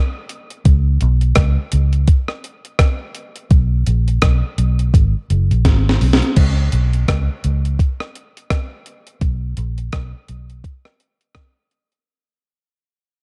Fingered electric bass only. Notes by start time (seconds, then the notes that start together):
0.66 C#2
1.02 B1
1.37 C#2
1.73 C#2
3.51 B1
3.87 A#1
4.23 B1
4.58 B1
4.94 G#1
5.30 F#1
5.51 A#1
5.65 G#1
6.01 B1
6.37 C#2
6.73 B1
7.09 C#2
7.44 C#2
9.22 B1
9.58 A#1
9.93 B1
10.29 B1